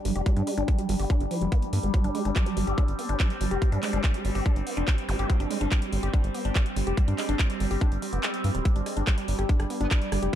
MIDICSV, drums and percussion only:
0, 0, Header, 1, 2, 480
1, 0, Start_track
1, 0, Tempo, 419580
1, 299, Time_signature, 4, 2, 24, 8
1, 11844, End_track
2, 0, Start_track
2, 0, Title_t, "Drums"
2, 58, Note_on_c, 9, 46, 108
2, 173, Note_off_c, 9, 46, 0
2, 178, Note_on_c, 9, 42, 51
2, 293, Note_off_c, 9, 42, 0
2, 298, Note_on_c, 9, 36, 124
2, 299, Note_on_c, 9, 42, 77
2, 413, Note_off_c, 9, 36, 0
2, 413, Note_off_c, 9, 42, 0
2, 418, Note_on_c, 9, 42, 49
2, 533, Note_off_c, 9, 42, 0
2, 538, Note_on_c, 9, 46, 108
2, 653, Note_off_c, 9, 46, 0
2, 658, Note_on_c, 9, 42, 52
2, 773, Note_off_c, 9, 42, 0
2, 778, Note_on_c, 9, 36, 115
2, 778, Note_on_c, 9, 42, 73
2, 893, Note_off_c, 9, 36, 0
2, 893, Note_off_c, 9, 42, 0
2, 898, Note_on_c, 9, 42, 79
2, 1013, Note_off_c, 9, 42, 0
2, 1019, Note_on_c, 9, 46, 104
2, 1133, Note_off_c, 9, 46, 0
2, 1139, Note_on_c, 9, 46, 62
2, 1253, Note_off_c, 9, 46, 0
2, 1258, Note_on_c, 9, 36, 123
2, 1259, Note_on_c, 9, 42, 46
2, 1373, Note_off_c, 9, 36, 0
2, 1373, Note_off_c, 9, 42, 0
2, 1378, Note_on_c, 9, 42, 49
2, 1493, Note_off_c, 9, 42, 0
2, 1498, Note_on_c, 9, 46, 104
2, 1613, Note_off_c, 9, 46, 0
2, 1619, Note_on_c, 9, 42, 48
2, 1733, Note_off_c, 9, 42, 0
2, 1738, Note_on_c, 9, 36, 116
2, 1738, Note_on_c, 9, 42, 76
2, 1853, Note_off_c, 9, 36, 0
2, 1853, Note_off_c, 9, 42, 0
2, 1858, Note_on_c, 9, 42, 52
2, 1973, Note_off_c, 9, 42, 0
2, 1978, Note_on_c, 9, 46, 111
2, 2092, Note_off_c, 9, 46, 0
2, 2098, Note_on_c, 9, 42, 50
2, 2212, Note_off_c, 9, 42, 0
2, 2218, Note_on_c, 9, 36, 124
2, 2218, Note_on_c, 9, 42, 72
2, 2333, Note_off_c, 9, 36, 0
2, 2333, Note_off_c, 9, 42, 0
2, 2338, Note_on_c, 9, 42, 51
2, 2453, Note_off_c, 9, 42, 0
2, 2458, Note_on_c, 9, 46, 100
2, 2573, Note_off_c, 9, 46, 0
2, 2578, Note_on_c, 9, 42, 50
2, 2693, Note_off_c, 9, 42, 0
2, 2698, Note_on_c, 9, 36, 117
2, 2698, Note_on_c, 9, 39, 109
2, 2698, Note_on_c, 9, 42, 75
2, 2813, Note_off_c, 9, 36, 0
2, 2813, Note_off_c, 9, 39, 0
2, 2813, Note_off_c, 9, 42, 0
2, 2818, Note_on_c, 9, 42, 76
2, 2933, Note_off_c, 9, 42, 0
2, 2938, Note_on_c, 9, 46, 104
2, 3053, Note_off_c, 9, 46, 0
2, 3059, Note_on_c, 9, 42, 51
2, 3173, Note_off_c, 9, 42, 0
2, 3178, Note_on_c, 9, 36, 118
2, 3179, Note_on_c, 9, 42, 49
2, 3293, Note_off_c, 9, 36, 0
2, 3293, Note_off_c, 9, 42, 0
2, 3298, Note_on_c, 9, 42, 47
2, 3413, Note_off_c, 9, 42, 0
2, 3418, Note_on_c, 9, 46, 106
2, 3533, Note_off_c, 9, 46, 0
2, 3538, Note_on_c, 9, 42, 47
2, 3653, Note_off_c, 9, 42, 0
2, 3658, Note_on_c, 9, 39, 113
2, 3658, Note_on_c, 9, 42, 76
2, 3659, Note_on_c, 9, 36, 120
2, 3773, Note_off_c, 9, 36, 0
2, 3773, Note_off_c, 9, 39, 0
2, 3773, Note_off_c, 9, 42, 0
2, 3779, Note_on_c, 9, 42, 51
2, 3893, Note_off_c, 9, 42, 0
2, 3898, Note_on_c, 9, 46, 106
2, 4013, Note_off_c, 9, 46, 0
2, 4019, Note_on_c, 9, 42, 51
2, 4133, Note_off_c, 9, 42, 0
2, 4139, Note_on_c, 9, 36, 115
2, 4139, Note_on_c, 9, 42, 75
2, 4253, Note_off_c, 9, 36, 0
2, 4253, Note_off_c, 9, 42, 0
2, 4259, Note_on_c, 9, 42, 54
2, 4373, Note_off_c, 9, 42, 0
2, 4379, Note_on_c, 9, 39, 59
2, 4379, Note_on_c, 9, 46, 105
2, 4493, Note_off_c, 9, 39, 0
2, 4493, Note_off_c, 9, 46, 0
2, 4499, Note_on_c, 9, 42, 54
2, 4613, Note_off_c, 9, 42, 0
2, 4618, Note_on_c, 9, 39, 110
2, 4618, Note_on_c, 9, 42, 77
2, 4619, Note_on_c, 9, 36, 110
2, 4733, Note_off_c, 9, 36, 0
2, 4733, Note_off_c, 9, 39, 0
2, 4733, Note_off_c, 9, 42, 0
2, 4739, Note_on_c, 9, 42, 83
2, 4853, Note_off_c, 9, 42, 0
2, 4859, Note_on_c, 9, 46, 102
2, 4973, Note_off_c, 9, 46, 0
2, 4979, Note_on_c, 9, 46, 61
2, 5093, Note_off_c, 9, 46, 0
2, 5099, Note_on_c, 9, 36, 109
2, 5099, Note_on_c, 9, 42, 48
2, 5213, Note_off_c, 9, 36, 0
2, 5213, Note_off_c, 9, 42, 0
2, 5219, Note_on_c, 9, 42, 49
2, 5333, Note_off_c, 9, 42, 0
2, 5338, Note_on_c, 9, 46, 100
2, 5453, Note_off_c, 9, 46, 0
2, 5459, Note_on_c, 9, 42, 51
2, 5573, Note_off_c, 9, 42, 0
2, 5579, Note_on_c, 9, 36, 114
2, 5579, Note_on_c, 9, 39, 114
2, 5579, Note_on_c, 9, 42, 77
2, 5693, Note_off_c, 9, 36, 0
2, 5693, Note_off_c, 9, 39, 0
2, 5693, Note_off_c, 9, 42, 0
2, 5699, Note_on_c, 9, 42, 57
2, 5813, Note_off_c, 9, 42, 0
2, 5819, Note_on_c, 9, 46, 99
2, 5933, Note_off_c, 9, 46, 0
2, 5939, Note_on_c, 9, 42, 53
2, 6053, Note_off_c, 9, 42, 0
2, 6059, Note_on_c, 9, 36, 113
2, 6059, Note_on_c, 9, 42, 83
2, 6173, Note_off_c, 9, 36, 0
2, 6173, Note_off_c, 9, 42, 0
2, 6179, Note_on_c, 9, 42, 57
2, 6293, Note_off_c, 9, 42, 0
2, 6299, Note_on_c, 9, 46, 104
2, 6413, Note_off_c, 9, 46, 0
2, 6419, Note_on_c, 9, 42, 55
2, 6533, Note_off_c, 9, 42, 0
2, 6539, Note_on_c, 9, 36, 109
2, 6539, Note_on_c, 9, 39, 109
2, 6539, Note_on_c, 9, 42, 77
2, 6653, Note_off_c, 9, 36, 0
2, 6653, Note_off_c, 9, 39, 0
2, 6653, Note_off_c, 9, 42, 0
2, 6659, Note_on_c, 9, 42, 84
2, 6773, Note_off_c, 9, 42, 0
2, 6779, Note_on_c, 9, 46, 96
2, 6893, Note_off_c, 9, 46, 0
2, 6899, Note_on_c, 9, 42, 55
2, 7013, Note_off_c, 9, 42, 0
2, 7019, Note_on_c, 9, 36, 112
2, 7019, Note_on_c, 9, 42, 53
2, 7133, Note_off_c, 9, 36, 0
2, 7133, Note_off_c, 9, 42, 0
2, 7139, Note_on_c, 9, 42, 51
2, 7253, Note_off_c, 9, 42, 0
2, 7259, Note_on_c, 9, 46, 101
2, 7373, Note_off_c, 9, 46, 0
2, 7379, Note_on_c, 9, 42, 54
2, 7493, Note_off_c, 9, 42, 0
2, 7499, Note_on_c, 9, 36, 116
2, 7499, Note_on_c, 9, 39, 115
2, 7499, Note_on_c, 9, 42, 79
2, 7613, Note_off_c, 9, 36, 0
2, 7613, Note_off_c, 9, 39, 0
2, 7613, Note_off_c, 9, 42, 0
2, 7619, Note_on_c, 9, 42, 56
2, 7733, Note_off_c, 9, 42, 0
2, 7739, Note_on_c, 9, 46, 102
2, 7853, Note_off_c, 9, 46, 0
2, 7859, Note_on_c, 9, 42, 54
2, 7973, Note_off_c, 9, 42, 0
2, 7979, Note_on_c, 9, 36, 112
2, 7979, Note_on_c, 9, 42, 82
2, 8093, Note_off_c, 9, 36, 0
2, 8093, Note_off_c, 9, 42, 0
2, 8099, Note_on_c, 9, 42, 57
2, 8213, Note_off_c, 9, 42, 0
2, 8219, Note_on_c, 9, 39, 61
2, 8219, Note_on_c, 9, 46, 103
2, 8333, Note_off_c, 9, 39, 0
2, 8333, Note_off_c, 9, 46, 0
2, 8339, Note_on_c, 9, 42, 57
2, 8453, Note_off_c, 9, 42, 0
2, 8458, Note_on_c, 9, 39, 119
2, 8458, Note_on_c, 9, 42, 80
2, 8459, Note_on_c, 9, 36, 107
2, 8573, Note_off_c, 9, 36, 0
2, 8573, Note_off_c, 9, 39, 0
2, 8573, Note_off_c, 9, 42, 0
2, 8578, Note_on_c, 9, 42, 86
2, 8693, Note_off_c, 9, 42, 0
2, 8698, Note_on_c, 9, 46, 99
2, 8813, Note_off_c, 9, 46, 0
2, 8818, Note_on_c, 9, 46, 60
2, 8933, Note_off_c, 9, 46, 0
2, 8938, Note_on_c, 9, 36, 111
2, 8938, Note_on_c, 9, 42, 55
2, 9053, Note_off_c, 9, 36, 0
2, 9053, Note_off_c, 9, 42, 0
2, 9058, Note_on_c, 9, 42, 52
2, 9173, Note_off_c, 9, 42, 0
2, 9178, Note_on_c, 9, 46, 102
2, 9293, Note_off_c, 9, 46, 0
2, 9298, Note_on_c, 9, 42, 54
2, 9413, Note_off_c, 9, 42, 0
2, 9418, Note_on_c, 9, 39, 124
2, 9418, Note_on_c, 9, 42, 82
2, 9533, Note_off_c, 9, 39, 0
2, 9533, Note_off_c, 9, 42, 0
2, 9538, Note_on_c, 9, 42, 58
2, 9653, Note_off_c, 9, 42, 0
2, 9658, Note_on_c, 9, 46, 101
2, 9772, Note_off_c, 9, 46, 0
2, 9778, Note_on_c, 9, 42, 58
2, 9892, Note_off_c, 9, 42, 0
2, 9898, Note_on_c, 9, 36, 119
2, 9898, Note_on_c, 9, 42, 85
2, 10012, Note_off_c, 9, 42, 0
2, 10013, Note_off_c, 9, 36, 0
2, 10018, Note_on_c, 9, 42, 54
2, 10133, Note_off_c, 9, 42, 0
2, 10138, Note_on_c, 9, 37, 38
2, 10138, Note_on_c, 9, 46, 104
2, 10253, Note_off_c, 9, 37, 0
2, 10253, Note_off_c, 9, 46, 0
2, 10258, Note_on_c, 9, 42, 54
2, 10373, Note_off_c, 9, 42, 0
2, 10378, Note_on_c, 9, 37, 72
2, 10378, Note_on_c, 9, 39, 120
2, 10378, Note_on_c, 9, 42, 77
2, 10379, Note_on_c, 9, 36, 118
2, 10493, Note_off_c, 9, 36, 0
2, 10493, Note_off_c, 9, 37, 0
2, 10493, Note_off_c, 9, 39, 0
2, 10493, Note_off_c, 9, 42, 0
2, 10498, Note_on_c, 9, 42, 88
2, 10613, Note_off_c, 9, 42, 0
2, 10618, Note_on_c, 9, 46, 103
2, 10733, Note_off_c, 9, 46, 0
2, 10739, Note_on_c, 9, 37, 38
2, 10739, Note_on_c, 9, 42, 57
2, 10853, Note_off_c, 9, 37, 0
2, 10853, Note_off_c, 9, 42, 0
2, 10859, Note_on_c, 9, 36, 114
2, 10859, Note_on_c, 9, 42, 53
2, 10973, Note_off_c, 9, 36, 0
2, 10973, Note_off_c, 9, 42, 0
2, 10979, Note_on_c, 9, 37, 72
2, 10979, Note_on_c, 9, 42, 54
2, 11093, Note_off_c, 9, 37, 0
2, 11093, Note_off_c, 9, 42, 0
2, 11099, Note_on_c, 9, 46, 101
2, 11213, Note_off_c, 9, 46, 0
2, 11219, Note_on_c, 9, 42, 54
2, 11333, Note_off_c, 9, 42, 0
2, 11339, Note_on_c, 9, 36, 117
2, 11339, Note_on_c, 9, 37, 37
2, 11339, Note_on_c, 9, 39, 126
2, 11339, Note_on_c, 9, 42, 82
2, 11453, Note_off_c, 9, 36, 0
2, 11453, Note_off_c, 9, 37, 0
2, 11453, Note_off_c, 9, 39, 0
2, 11453, Note_off_c, 9, 42, 0
2, 11459, Note_on_c, 9, 42, 57
2, 11573, Note_off_c, 9, 42, 0
2, 11579, Note_on_c, 9, 37, 74
2, 11579, Note_on_c, 9, 46, 105
2, 11693, Note_off_c, 9, 37, 0
2, 11693, Note_off_c, 9, 46, 0
2, 11699, Note_on_c, 9, 42, 54
2, 11813, Note_off_c, 9, 42, 0
2, 11844, End_track
0, 0, End_of_file